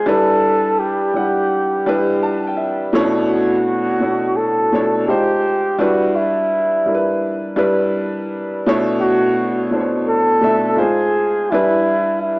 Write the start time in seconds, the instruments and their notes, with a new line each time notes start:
0.06 upright piano G3 D4 E4 B4, flugelhorn A4
0.79 flugelhorn G4
1.14 upright piano G3 D4 E4 F#5
1.86 upright piano G3 D4 E4 B4
2.23 upright piano A5
2.48 upright piano G5
2.57 upright piano E5
2.93 upright piano B2 A3 C#4 E4 C#5
3.01 upright piano D4
3.29 flugelhorn F#4
4.00 upright piano B2 A3 D4 E4 C#5
4.36 flugelhorn A4
4.73 upright piano B2 A3 D4 E4 C#5
5.08 upright piano G#3 D#4 F4 C5, flugelhorn G4
5.78 upright piano G3 D4 E4 B4, flugelhorn F#4
6.16 flugelhorn E4
6.86 upright piano G3 D4 E4 A#4
6.95 upright piano B4
7.56 upright piano G3 D4 E4 B4
8.66 upright piano B2 A3 D4 E4 C#5
9.00 flugelhorn F#4
9.71 upright piano B2 A3 D4 E4 C5
9.80 upright piano C#5
10.08 flugelhorn A4
10.41 upright piano B2 A3 D4 E4 E5
10.76 upright piano G#3 D#4 F4 C5, flugelhorn G#4
11.51 upright piano G3 D4 E4 B4, flugelhorn E4
12.22 flugelhorn E4